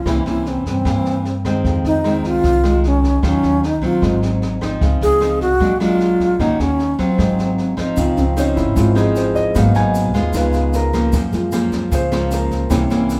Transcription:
Already playing: F4
0.05 C2 C3 E3 A#3 C#4 E4, kick, cross-stick, snare
0.25 C2 E3 A#3 C#4 E4, snare
0.46 C4, snare
0.65 G2 C4, kick, snare
0.85 G2 E3 A#3, kick, cross-stick, snare
1.05 snare
1.25 snare
1.45 D#3 G#3 C4, kick, cross-stick, snare
1.65 F2, kick, snare
1.84 F2 D#4, snare
2.04 D#3 G#3 C4, cross-stick, snare
2.24 C2 F4, kick, snare
2.44 C2, kick, snare
2.63 D#3 G#3, cross-stick, snare
2.84 C#4, snare
3.03 kick, snare
3.23 D#2 D#3 F#3 C#4 F4, kick, cross-stick, snare
3.43 D#2, snare
3.63 D#4, snare
3.82 A#1 F#3 C4 F4, kick, snare
4.02 G#1 G#2, kick, cross-stick, snare
4.22 snare
4.42 snare
4.61 F3 C4 D#4, kick, cross-stick, snare
4.81 C#2 C#3, kick, snare
5.01 C#2 G#4, snare
5.21 F3 C4 D#4, cross-stick, snare
5.41 C2 F#4, kick, snare
5.60 A#1 A#2 F#3 G#3 D4, kick, snare
5.80 F#3 G#3 D4 F4, cross-stick, snare
6.00 snare
6.20 kick, snare
6.39 D#2 D#3 A#3 C#4 D#4 F#4, kick, cross-stick, snare
6.59 D#2 C#4, snare
6.79 snare
6.99 D#2 F#3 C4 F4, kick, snare
7.18 G#1 G#2, kick, cross-stick, snare
7.39 snare
7.58 snare
7.77 F3 C4 D#4, kick, cross-stick, snare
7.97 C#2 C#3 C4 D#4 F4, kick, snare, shaker
8.17 C#2 C4, snare, shaker
8.37 F3 C4 C#4 D#4, cross-stick, snare, shaker
8.56 G#1 E4, kick, snare, shaker
8.76 G#1 G#2 F4, kick, snare, shaker
8.95 F3 C4 D#4 G#4, cross-stick, snare, shaker
9.16 C5, snare, shaker
9.35 D#5, kick, snare, shaker
9.54 G#1 G#2 F#3 A#3 B3 D#4 F#4 F5, kick, cross-stick, snare, shaker
9.75 G#1 F#3 B3 D#4 G#5, snare, shaker
9.95 snare, shaker
10.14 D#2 G#3 B3 F4, kick, snare, shaker
10.33 C#2 C#3 B3 D#4 F4 B4, kick, cross-stick, snare, shaker
10.53 snare, shaker
10.73 A#4, snare, shaker
10.93 F3 A#3 C#4, kick, cross-stick, snare, shaker
11.13 F#2, kick, snare, shaker
11.32 F#2 G#3 A#3 F4, snare, shaker
11.52 F3 A#3 C#4, cross-stick, snare, shaker
11.72 C#2, kick, snare, shaker
11.91 C#2 C#3 C5, kick, snare, shaker
12.12 F3 G#3 A#3 C#4 F4, cross-stick, snare, shaker
12.31 A#4, snare, shaker
12.51 kick, snare, shaker
12.70 C2 C3 E3 A#3 C#4 E4, kick, cross-stick, snare, shaker
12.90 C2 E3 A#3 C#4, snare, shaker
13.10 snare, shaker

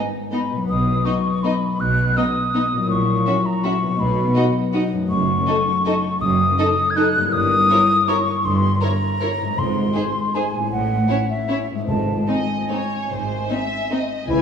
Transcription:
Already playing: G#2 B3 D#4 B4 G#5
0.32 B3 D#4 D#5 B5
0.51 B2
0.55 F#3
0.60 D#4
0.64 B1 B4 D#6
0.69 B2
1.05 B3 D#4 D#5 C#6
1.43 B3 D#4 D#5 B5
1.80 B1 B2 F#6
2.17 B3 D#4 D#5 D#6
2.54 B3 D#4 D#5
2.73 A#2
2.77 F#3
2.82 E4
2.86 A#1 A#2 C#5
2.90 C#6
3.26 C#4 F#4 E5
3.46 A#5
3.64 C#4 F#4 E5 C#6
3.82 B2
3.87 F#3
3.91 D#4
3.96 B2 D#5
4.00 B1 B5
4.36 D#4 F#4 D#5
4.74 D#4 F#4 D#5
4.93 F#2
4.97 A3
5.01 D#4
5.06 D#5 C#6
5.10 F#1 F#2
5.47 D#4 A4 D#5
5.85 D#4 A4 D#5
6.21 F#1 F#2 D#6
6.58 D#4 A4 D#5
6.90 G#6
6.96 D#4 A4 D#5 F#6
7.16 G2
7.20 A#3
7.25 E4
7.29 C#5 D#6
7.33 G1 G2
7.70 E4 A#4 C#5
8.08 E4 A#4 C#5 C#6
8.45 G1 G2 C6
8.81 E4 A#4 C#5 A#5
9.21 E4 A#4 C#5
9.40 G#2
9.45 G#3
9.49 D#4
9.54 C5
9.58 G#1 G#2 C6
9.95 D#4 G#4 C5
10.35 D#4 G#4 C5 G#5
10.54 A2
10.59 C#4
10.63 C#5
10.72 A1 A2 F#5
11.09 C#4 E4 C#5
11.30 E5
11.49 C#4 E4 C#5
11.71 G#2
11.75 G#3
11.79 D#4
11.84 G#1 G#2 C5
11.88 G#2 A5
12.28 C4 D#4 D#5 G#5
12.70 C4 D#4 C#5
13.10 G#1 G#2 C5
13.50 C4 D#4 E5
13.91 C4 D#4 D#5
14.29 C#2 C#3 E3 E4 G#5

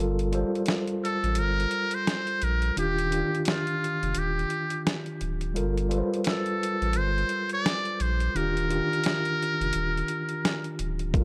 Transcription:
Already playing: G1 G3 F4
0.00 A4 A#4
0.19 closed hi-hat
0.32 G3 F4 A4 C5, closed hi-hat
0.55 closed hi-hat
0.66 snare, closed hi-hat
0.87 closed hi-hat
1.04 A4, closed hi-hat
1.24 A1, closed hi-hat
1.35 G1 A#4, closed hi-hat
1.60 closed hi-hat
1.71 closed hi-hat
1.91 C5, closed hi-hat
2.07 snare, closed hi-hat
2.27 closed hi-hat
2.42 A#1 A#4, closed hi-hat
2.62 closed hi-hat
2.76 D#1 D#3 D4 F4 G4, closed hi-hat
2.98 closed hi-hat
3.10 D#3 D4 F4 G4, closed hi-hat
3.35 closed hi-hat
3.45 F4, snare, closed hi-hat
3.67 closed hi-hat
3.84 closed hi-hat
4.03 F1, closed hi-hat
4.15 D#1 G4, closed hi-hat
4.39 closed hi-hat
4.50 closed hi-hat
4.70 closed hi-hat
4.87 snare, closed hi-hat
5.06 closed hi-hat
5.21 D1, closed hi-hat
5.41 closed hi-hat
5.54 G1 G3 F4 A4 A#4, closed hi-hat
5.77 closed hi-hat
5.89 G3 F4 A4 B4, closed hi-hat
5.98 C5
6.14 closed hi-hat
6.24 A4, snare, closed hi-hat
6.46 closed hi-hat
6.63 closed hi-hat
6.82 A1, closed hi-hat
6.93 G1 C5, closed hi-hat
7.18 closed hi-hat
7.29 closed hi-hat
7.49 D5, closed hi-hat
7.66 snare, closed hi-hat
7.85 closed hi-hat
8.00 A#1 C5, closed hi-hat
8.20 closed hi-hat
8.34 D#1 D#3 D4 F4 G4 A#4, closed hi-hat
8.57 closed hi-hat
8.69 D#3 D4 F4 G4, closed hi-hat
8.93 closed hi-hat
9.04 snare, closed hi-hat
9.25 closed hi-hat
9.43 closed hi-hat
9.61 F1, closed hi-hat
9.73 D#1, closed hi-hat
9.97 closed hi-hat
10.08 closed hi-hat
10.29 closed hi-hat
10.45 snare, closed hi-hat
10.64 closed hi-hat
10.79 D1, closed hi-hat
10.99 closed hi-hat
11.14 G1 G3 F4 A4 A#4, kick, closed hi-hat

